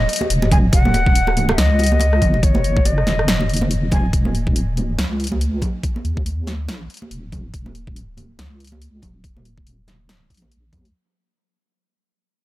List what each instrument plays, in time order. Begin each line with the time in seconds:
Already playing: shakuhachi D#5
0.09 closed hi-hat
0.13 closed hi-hat
0.16 closed hi-hat
0.21 muted conga, high conga
0.30 wobble bass D#1, closed hi-hat
0.42 muted conga
0.52 shakuhachi G#5, kick, closed hi-hat, low conga
0.73 wobble bass D#1, shakuhachi F#5, kick, closed hi-hat, muted conga
0.85 high conga
0.94 closed hi-hat, muted conga
1.06 kick
1.15 closed hi-hat
1.27 cross-stick, muted conga
1.37 closed hi-hat, high conga
1.49 cross-stick, muted conga
1.58 wobble bass C#2, shakuhachi D#5, snare, closed hi-hat
1.79 closed hi-hat, muted conga
1.84 closed hi-hat
1.86 closed hi-hat
1.92 high conga
2.00 closed hi-hat, muted conga
2.13 cross-stick
2.22 wobble bass F#1, kick, closed hi-hat, low conga
2.34 muted conga
2.43 shakuhachi C#5, kick, closed hi-hat
2.55 muted conga, high conga
2.64 closed hi-hat
2.77 kick
2.85 shakuhachi D#5, closed hi-hat, muted conga
2.98 cross-stick
3.07 wobble bass E1, snare, closed hi-hat, muted conga, high conga
3.19 cross-stick
3.28 snare, closed hi-hat
3.41 muted conga
3.49 closed hi-hat
3.54 closed hi-hat
3.57 closed hi-hat
3.61 muted conga, high conga
3.71 closed hi-hat
3.91 wobble bass D#1, shakuhachi G#5, kick, closed hi-hat, muted conga, low conga
4.13 wobble bass D#1, kick, closed hi-hat
4.25 high conga
4.35 closed hi-hat
4.47 kick
4.56 closed hi-hat
4.72 wobble bass D1
4.77 closed hi-hat, high conga
4.98 wobble bass C#2, snare, closed hi-hat
5.20 closed hi-hat
5.24 closed hi-hat
5.27 closed hi-hat
5.32 high conga
5.41 closed hi-hat
5.62 kick, closed hi-hat, low conga
5.83 kick, closed hi-hat
5.96 high conga
6.05 wobble bass D#2, closed hi-hat
6.17 kick
6.26 closed hi-hat
6.47 snare, closed hi-hat, high conga
6.69 snare, closed hi-hat
6.90 closed hi-hat
6.94 closed hi-hat
6.97 closed hi-hat
7.02 high conga
7.11 wobble bass D#1, closed hi-hat
7.32 kick, closed hi-hat, low conga
7.54 wobble bass D#1, kick, closed hi-hat
7.66 high conga
7.75 closed hi-hat
7.87 kick
7.96 closed hi-hat
8.17 closed hi-hat, high conga
8.39 wobble bass C#2, snare, closed hi-hat
8.60 closed hi-hat
8.64 closed hi-hat
8.67 closed hi-hat
8.72 high conga
8.82 closed hi-hat
9.02 wobble bass D#1, kick, closed hi-hat, low conga
9.24 kick, closed hi-hat
9.37 high conga
9.45 closed hi-hat
9.58 kick
9.67 closed hi-hat
9.87 wobble bass D#1, snare, closed hi-hat, high conga
10.09 snare, closed hi-hat
10.30 wobble bass A#1, kick, closed hi-hat
10.34 closed hi-hat
10.37 closed hi-hat
10.42 high conga
10.52 closed hi-hat
10.73 wobble bass D#2, kick, closed hi-hat, low conga
10.85 closed hi-hat